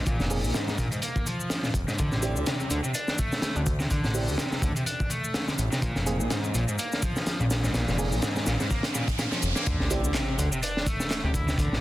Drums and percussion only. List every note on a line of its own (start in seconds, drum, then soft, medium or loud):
0.06 kick loud
0.06 closed hi-hat medium
0.06 shaker soft
0.20 snare soft
0.20 shaker soft
0.30 open hi-hat medium
0.30 shaker medium
0.44 shaker soft
0.54 snare loud
0.54 closed hi-hat medium
0.54 shaker soft
0.68 snare medium
0.68 shaker soft
0.78 kick medium
0.78 closed hi-hat medium
0.78 shaker medium
0.92 closed hi-hat soft
0.92 shaker soft
1.02 closed hi-hat medium
1.02 shaker soft
1.16 kick medium
1.16 shaker soft
1.26 closed hi-hat medium
1.26 shaker medium
1.40 shaker soft
1.50 snare loud
1.50 closed hi-hat medium
1.50 shaker soft
1.64 snare medium
1.64 shaker soft
1.74 kick medium
1.74 closed hi-hat medium
1.74 shaker medium
1.88 snare soft
1.88 shaker soft
1.98 kick loud
1.98 closed hi-hat medium
1.98 shaker soft
2.12 snare soft
2.12 shaker soft
2.22 closed hi-hat medium
2.22 shaker medium
2.36 shaker soft
2.46 snare loud
2.46 closed hi-hat medium
2.46 shaker soft
2.60 shaker soft
2.70 closed hi-hat medium
2.70 shaker medium
2.84 shaker soft
2.94 closed hi-hat medium
2.94 shaker soft
3.08 snare soft
3.08 shaker soft
3.18 kick medium
3.18 closed hi-hat medium
3.18 shaker medium
3.32 snare medium
3.32 shaker soft
3.42 snare loud
3.42 closed hi-hat medium
3.42 shaker soft
3.56 shaker soft
3.66 kick medium
3.66 closed hi-hat medium
3.66 shaker medium
3.80 snare medium
3.80 shaker soft
3.90 kick loud
3.90 closed hi-hat medium
3.90 shaker soft
4.04 snare medium
4.04 shaker soft
4.15 open hi-hat medium
4.15 shaker medium
4.28 shaker soft
4.38 snare loud
4.38 closed hi-hat medium
4.38 shaker soft
4.52 snare medium
4.52 shaker soft
4.62 kick loud
4.62 closed hi-hat medium
4.62 shaker medium
4.76 closed hi-hat soft
4.76 shaker soft
4.86 closed hi-hat medium
4.86 shaker soft
5.00 kick medium
5.00 shaker soft
5.10 closed hi-hat medium
5.10 shaker medium
5.24 shaker soft
5.34 snare loud
5.34 closed hi-hat medium
5.34 shaker soft
5.48 snare medium
5.48 shaker soft
5.58 closed hi-hat medium
5.58 shaker medium
5.72 snare soft
5.72 shaker soft
5.82 kick loud
5.82 closed hi-hat medium
5.82 shaker soft
5.96 snare soft
5.96 shaker soft
6.07 closed hi-hat medium
6.07 shaker medium
6.20 shaker soft
6.30 snare loud
6.30 closed hi-hat medium
6.30 shaker soft
6.44 shaker soft
6.55 closed hi-hat medium
6.55 shaker medium
6.68 shaker soft
6.79 closed hi-hat medium
6.79 shaker soft
6.92 snare soft
6.92 shaker soft
7.03 kick medium
7.03 closed hi-hat medium
7.03 shaker medium
7.16 snare medium
7.16 shaker soft
7.27 snare loud
7.27 closed hi-hat medium
7.27 shaker soft
7.40 shaker soft
7.51 snare medium
7.51 closed hi-hat medium
7.51 shaker medium
7.64 snare medium
7.64 shaker soft
7.74 snare medium
7.74 closed hi-hat medium
7.74 shaker soft
7.88 snare soft
7.88 shaker soft
7.99 open hi-hat medium
7.99 shaker medium
8.12 shaker soft
8.22 snare loud
8.22 closed hi-hat medium
8.22 shaker soft
8.36 snare medium
8.36 shaker soft
8.46 snare loud
8.46 closed hi-hat medium
8.46 shaker medium
8.60 snare soft
8.60 shaker soft
8.71 kick medium
8.71 closed hi-hat medium
8.71 shaker soft
8.83 snare medium
8.83 closed hi-hat medium
8.83 shaker soft
8.95 snare soft
8.95 shaker medium
9.08 kick medium
9.08 closed hi-hat medium
9.08 shaker soft
9.19 snare loud
9.19 closed hi-hat medium
9.19 shaker soft
9.32 snare medium
9.32 shaker soft
9.42 closed hi-hat medium
9.42 shaker medium
9.56 snare soft
9.56 shaker soft
9.66 kick loud
9.66 closed hi-hat medium
9.66 shaker soft
9.80 snare soft
9.90 closed hi-hat medium
9.90 shaker medium
10.04 shaker soft
10.14 snare loud
10.14 clap loud
10.14 closed hi-hat medium
10.14 shaker soft
10.39 closed hi-hat medium
10.39 shaker medium
10.52 shaker soft
10.63 closed hi-hat loud
10.63 shaker soft
10.77 snare soft
10.87 kick medium
10.87 closed hi-hat medium
10.87 shaker medium
11.00 snare medium
11.00 shaker soft
11.11 snare loud
11.11 clap loud
11.11 closed hi-hat medium
11.11 shaker soft
11.34 kick medium
11.34 closed hi-hat medium
11.34 shaker medium
11.48 snare medium
11.48 shaker soft
11.58 kick loud
11.58 closed hi-hat loud
11.58 shaker soft
11.73 snare medium